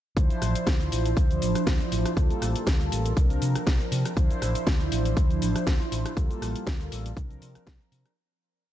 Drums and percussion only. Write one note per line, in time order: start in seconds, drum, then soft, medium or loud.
0.17 kick loud
0.17 closed hi-hat soft
0.17 shaker soft
0.30 closed hi-hat soft
0.30 shaker soft
0.42 cross-stick medium
0.42 open hi-hat loud
0.42 shaker medium
0.55 closed hi-hat medium
0.55 shaker soft
0.67 kick loud
0.67 snare loud
0.67 closed hi-hat medium
0.67 shaker soft
0.81 closed hi-hat soft
0.81 shaker soft
0.92 open hi-hat loud
0.92 shaker medium
1.05 closed hi-hat medium
1.05 shaker soft
1.17 kick loud
1.17 closed hi-hat medium
1.17 shaker soft
1.31 closed hi-hat soft
1.31 shaker soft
1.42 open hi-hat loud
1.42 shaker medium
1.55 cross-stick medium
1.55 closed hi-hat medium
1.55 shaker soft
1.67 kick loud
1.67 snare loud
1.67 closed hi-hat medium
1.67 shaker soft
1.80 closed hi-hat soft
1.80 shaker soft
1.92 open hi-hat loud
1.92 shaker medium
2.06 cross-stick medium
2.06 closed hi-hat medium
2.06 shaker soft
2.17 kick loud
2.17 closed hi-hat soft
2.17 shaker soft
2.30 closed hi-hat soft
2.30 shaker soft
2.42 cross-stick medium
2.42 open hi-hat loud
2.42 shaker medium
2.56 closed hi-hat medium
2.56 shaker soft
2.67 kick loud
2.67 snare loud
2.67 closed hi-hat medium
2.67 shaker soft
2.81 closed hi-hat soft
2.81 shaker soft
2.92 open hi-hat loud
2.92 shaker medium
3.06 closed hi-hat medium
3.06 shaker soft
3.17 kick loud
3.17 closed hi-hat medium
3.17 shaker soft
3.30 closed hi-hat soft
3.30 shaker soft
3.42 open hi-hat loud
3.42 shaker medium
3.55 cross-stick medium
3.55 closed hi-hat medium
3.55 shaker soft
3.67 kick loud
3.67 snare loud
3.67 closed hi-hat medium
3.67 shaker soft
3.80 closed hi-hat soft
3.80 shaker soft
3.92 open hi-hat loud
3.92 shaker medium
4.05 cross-stick medium
4.05 closed hi-hat medium
4.05 shaker soft
4.17 kick loud
4.17 closed hi-hat soft
4.17 shaker soft
4.31 closed hi-hat soft
4.31 shaker soft
4.42 cross-stick medium
4.42 open hi-hat loud
4.42 shaker medium
4.55 closed hi-hat medium
4.55 shaker soft
4.67 kick loud
4.67 snare loud
4.67 closed hi-hat medium
4.67 shaker soft
4.80 closed hi-hat soft
4.80 shaker soft
4.92 open hi-hat loud
4.92 shaker medium
5.05 closed hi-hat soft
5.05 shaker soft
5.17 kick loud
5.17 closed hi-hat medium
5.17 shaker soft
5.30 closed hi-hat soft
5.30 shaker soft
5.42 open hi-hat loud
5.42 shaker medium
5.56 cross-stick medium
5.56 closed hi-hat medium
5.56 shaker soft
5.67 kick loud
5.67 snare loud
5.67 closed hi-hat soft
5.67 shaker soft
5.81 closed hi-hat soft
5.81 shaker soft
5.92 open hi-hat loud
5.92 shaker medium
6.06 cross-stick medium
6.06 closed hi-hat medium
6.06 shaker soft
6.17 kick loud
6.17 closed hi-hat soft
6.17 shaker soft
6.31 closed hi-hat soft
6.31 shaker soft
6.42 cross-stick medium
6.42 open hi-hat loud
6.42 shaker medium
6.56 closed hi-hat medium
6.56 shaker soft
6.67 kick loud
6.67 snare loud
6.67 closed hi-hat medium
6.67 shaker soft
6.81 closed hi-hat soft
6.81 shaker soft
6.92 open hi-hat loud
6.92 shaker medium
7.06 closed hi-hat medium
7.06 shaker soft
7.17 kick loud
7.17 closed hi-hat medium
7.17 shaker soft
7.30 closed hi-hat soft
7.30 shaker soft
7.42 open hi-hat loud
7.42 shaker medium
7.55 cross-stick medium
7.55 closed hi-hat medium
7.55 shaker soft
7.67 kick loud
7.67 snare loud
7.67 closed hi-hat soft
7.67 shaker soft
7.81 closed hi-hat soft
7.81 shaker soft
7.92 open hi-hat loud
7.92 shaker medium
8.06 cross-stick medium
8.06 closed hi-hat medium
8.06 shaker soft